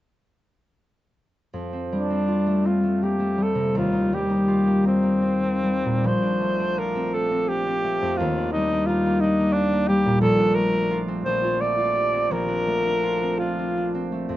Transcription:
1.53 F2
1.73 C4
1.92 G3 D4
2.10 C4
2.28 F4
2.46 A3
2.64 C4 F4
2.83 A3
3.03 A#3 G4
3.20 A3
3.38 G3
3.42 A4
3.55 C3
3.75 D#2 F4
3.92 D#4
4.13 G3 G4
4.30 D#4
4.48 F4
4.67 A#3
4.84 C4 D#4
5.03 A#3
5.22 C4
5.43 A#3
5.64 G3
5.85 A#2
6.04 A#1 C5
6.22 D4
6.41 A3
6.60 D4
6.78 F4 A#4
6.95 C4
7.14 D4 A4
7.31 C4
7.48 D4 G4
7.67 C4
7.84 A3
8.02 F2
8.17 D#2 F4
8.38 D4
8.52 G3 D#4
8.73 D4
8.87 D#4 F4
9.06 A#3
9.21 D4 D#4
9.40 A#3
9.53 C4 D4
9.73 A#3
9.88 G3 G4
10.06 A#2
10.21 A#1 A4
10.38 D4
10.55 A3 A#4
10.73 D4
10.91 F4
11.08 C4
11.25 A#1 C5
11.44 F4
11.61 A3 D5
11.78 F4
11.96 G4
12.13 C4
12.31 A#1 A#4
12.48 D4
12.68 A3
12.87 D4
13.03 F4
13.22 C4
13.39 D4 F4
13.59 C4
13.78 D4
13.95 C4
14.12 A3
14.29 F2

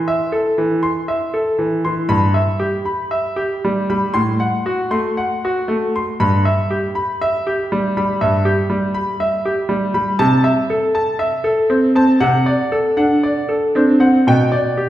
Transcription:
0.08 E5
0.32 A4
0.58 E3
0.83 C6
1.08 E5
1.34 A4
1.59 E3
1.85 E3 C6
2.09 G2 B5
2.34 E5
2.60 G4
2.85 B5
3.11 E5
3.36 G4
3.65 G3
3.90 G3 B5
4.14 A2 C6
4.40 F#5
4.66 F#4
4.91 A3 C6
5.17 F#5
5.45 F#4
5.68 A3
5.96 C6
6.20 G2 B5
6.45 E5
6.70 G4
6.95 B5
7.21 E5
7.47 G4
7.72 G3
7.97 G3 B5
8.21 G2 E5
8.45 G4
8.70 G3
8.94 B5
9.20 E5
9.45 G4
9.69 G3
9.94 G3 B5
10.19 C3 A5
10.44 E5
10.70 A4
10.95 A5
11.19 E5
11.44 A4
11.70 C4
11.95 C4 A5
12.20 C3 F#5
12.46 D5
12.72 A4
12.97 D4 F#5
13.23 D5
13.49 A4
13.75 C4 D4
14.00 C4 F#5
14.27 B2 G5
14.52 D5
14.77 G4

